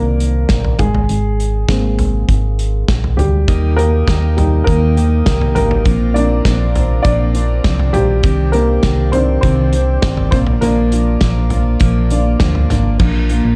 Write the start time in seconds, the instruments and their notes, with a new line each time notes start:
Already playing: fm bass C2, upright piano D#3 A#3 C4 D4 A#4 C5
0.20 closed hi-hat
0.49 fm bass A#1, kick, snare, closed hi-hat
0.65 floor tom
0.79 fm bass G#1, upright piano G#3 G#4, kick, closed hi-hat, floor tom
0.94 floor tom
1.09 fm bass G#1, closed hi-hat
1.40 closed hi-hat
1.68 fm bass G#1, upright piano G#3 A#3 C4, kick, snare, closed hi-hat
1.99 closed hi-hat, floor tom
2.28 fm bass G#1, kick, closed hi-hat
2.59 closed hi-hat
2.88 fm bass A#1, kick, snare, closed hi-hat
3.04 floor tom
3.17 fm bass D2, upright piano G3 G4, closed hi-hat, floor tom
3.48 fm bass D#2, steel-string acoustic guitar D#3 A#3 D#4 G4, tonewheel organ A#4 D#5 G5 D#6, kick, closed hi-hat
3.77 upright piano A#3 A#4, steel-string acoustic guitar A#3 D#4 G4, closed hi-hat
4.07 fm bass D#2, steel-string acoustic guitar D#3 A#3 D#4 G4, kick, snare, closed hi-hat
4.37 upright piano G3 A#3 D#4, steel-string acoustic guitar A#3 D#4 G4, closed hi-hat, floor tom
4.64 fm bass D#2, steel-string acoustic guitar D#3 A#3 D#4 G4, upright piano A#3 A#4, kick, closed hi-hat
4.96 steel-string acoustic guitar A#3 D#4 G4, closed hi-hat
5.26 fm bass C2, steel-string acoustic guitar D#3 A#3 D#4 G4, kick, snare, closed hi-hat
5.41 floor tom
5.55 fm bass G#1, upright piano A#3 A#4, steel-string acoustic guitar A#3 D#4 G4, closed hi-hat, floor tom
5.71 floor tom
5.85 fm bass A#1, steel-string acoustic guitar A#2 F3 C4 D4 F4, tonewheel organ C5 F5 A#5 D6, kick, closed hi-hat
6.14 upright piano A#3 C4 D4 D5, steel-string acoustic guitar C4 D4 F4, closed hi-hat
6.45 fm bass A#1, steel-string acoustic guitar F3 C4 D4 F4, kick, snare, closed hi-hat
6.75 steel-string acoustic guitar C4 D4 F4, closed hi-hat, floor tom
7.03 fm bass A#1, steel-string acoustic guitar A#2 F3 C4, upright piano D4 D5, kick, closed hi-hat
7.07 steel-string acoustic guitar D4 F4
7.35 steel-string acoustic guitar C4 D4 F4, closed hi-hat
7.64 fm bass C2, steel-string acoustic guitar F3 C4 D4 F4, kick, snare, closed hi-hat
7.79 floor tom
7.93 fm bass A#1, upright piano G3 G4, steel-string acoustic guitar C4 D4 F4, closed hi-hat, floor tom
8.23 fm bass C2, steel-string acoustic guitar C3 D#3 C4 D4 G4, tonewheel organ D5 G5, kick, closed hi-hat
8.52 upright piano A#3 A#4, steel-string acoustic guitar C4 D4 G4, closed hi-hat
8.83 fm bass C2, steel-string acoustic guitar D#3 C4 D4 G4, kick, snare, closed hi-hat
9.12 upright piano D#3 C4 D4 C5, steel-string acoustic guitar C4 D4 G4, closed hi-hat, floor tom
9.41 fm bass C2, steel-string acoustic guitar C3 D#3 C4 D4 G4, upright piano C4 C5, kick, closed hi-hat
9.73 steel-string acoustic guitar C4 D4 G4, closed hi-hat
10.02 fm bass G1, steel-string acoustic guitar D#3 C4 D4 G4, kick, snare, closed hi-hat
10.17 floor tom
10.31 fm bass A#1, steel-string acoustic guitar A#3 D4 F4, upright piano C4 C5, tonewheel organ A#4 D5 F5, kick, snare, closed hi-hat, floor tom
10.47 floor tom
10.61 fm bass A#1, steel-string acoustic guitar A#2 F3 A#3 D4 F4, upright piano F3 A#3 D4 A#4, closed hi-hat
10.92 steel-string acoustic guitar A#3 D4 F4, closed hi-hat
11.21 fm bass A#1, steel-string acoustic guitar F3 A#3 D4 F4, kick, snare, closed hi-hat
11.50 steel-string acoustic guitar A#3 D4 F4, closed hi-hat, floor tom
11.80 fm bass A#1, steel-string acoustic guitar A#2 F3 A#3 D4 F4, kick, closed hi-hat
12.10 upright piano F3 A#3 D4, steel-string acoustic guitar A#3 D4 F4, closed hi-hat
12.40 fm bass D2, steel-string acoustic guitar F3 A#3 D4 F4, kick, snare, closed hi-hat
12.55 floor tom
12.70 fm bass G#1, steel-string acoustic guitar A#3 D4 F4, snare, closed hi-hat, floor tom
12.99 fm bass A#1, steel-string acoustic guitar A#2 F3 A#3 D4 F4, tonewheel organ D4 A#4 F5 A#5, kick, crash
13.29 steel-string acoustic guitar A#3 D4 F4, closed hi-hat
13.45 fm bass A#1